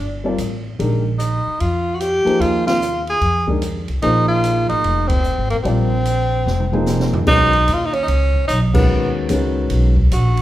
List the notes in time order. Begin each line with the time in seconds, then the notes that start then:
Already playing: D4
0.00 G1
0.24 G3 C4 F4 A#4 D5
0.38 A1, hi-hat pedal, ride
0.79 A#1 D#3 G#3 D4 G4 A#4, ride
1.19 D#4, hi-hat pedal, ride
1.47 muted upright bass stroke
1.60 F2 F4, ride
1.95 F#4
2.00 G4, hi-hat pedal, ride
2.25 F3 A#3 D#4 G#4 C5, muted upright bass stroke, ride
2.39 D#2 F4, ride
2.67 F4, snare, ride
2.82 hi-hat pedal
3.07 G#4, ride
3.21 F2, ride
3.47 D#3 G#3 D4 G4 A#4, kick
3.62 hi-hat pedal, ride
3.88 C2, ride
4.02 A#1 F3 A#3 D#4 G#4 C5, ride
4.28 F4
4.44 hi-hat pedal, ride
4.69 A1 D#4, ride
4.84 F1, ride
5.08 C4, kick, ride
5.24 hi-hat pedal
5.38 G#1
5.50 A1 A#3, ride
5.63 A#1 G3 C4 F4 A#4 D5, ride
6.05 hi-hat pedal, ride
6.46 F1, snare
6.60 mid tom
6.72 F3 A#3 D#4 G#4 C5, mid tom
6.86 snare, hi-hat pedal
7.00 snare
7.13 A1, floor tom
7.26 B1 D#3 G#3 C#4 D#4 F#4 B4, kick, crash
7.53 ride
7.68 D#2, hi-hat pedal, ride
7.74 F4
7.86 D#4
7.93 C#4, ride
8.02 C#4 D#4
8.08 C#2, ride
8.34 kick
8.48 B1 D#4, hi-hat pedal, ride
8.74 D#3 G#3 B3 C#4 F#4 B4, kick, crash
8.90 D#2
9.29 C#2 D#3 G#3 C#4 F#4 B4, hi-hat pedal, ride
9.70 B1, ride
9.96 kick
10.11 A#1 F#4, hi-hat pedal, ride
10.37 ride